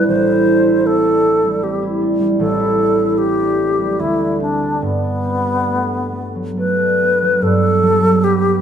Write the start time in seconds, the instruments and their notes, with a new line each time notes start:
Already playing: harp G3 B3 C4 D4 E4
0.07 harp A1, alto flute C5
0.28 harp E4
0.47 harp D4
0.67 harp E4
0.86 harp C4, alto flute A4
1.05 harp D4
1.24 harp C4
1.44 harp G3
1.62 harp C4, alto flute G4
1.82 harp E4
2.01 harp D4
2.20 harp G3
2.39 harp A1, alto flute A4
2.59 harp E4
2.78 harp D4
2.98 harp E4
3.18 harp C4, alto flute G4
3.38 harp D4
3.59 harp C4
3.79 harp G3
4.00 harp D2, alto flute E4
4.19 harp D4
4.40 harp C4, alto flute D4
4.62 harp D4
4.82 harp G2, alto flute B3
5.04 harp D4
5.24 harp C4
5.46 harp D4
5.68 harp A3
5.91 harp B3
6.12 harp A3
6.35 harp F#3
6.57 harp A3, alto flute B4
6.79 harp D4
7.01 harp B3
7.22 harp F#3
7.42 harp G2, alto flute A4
7.83 harp F#3
8.23 harp B3, alto flute G4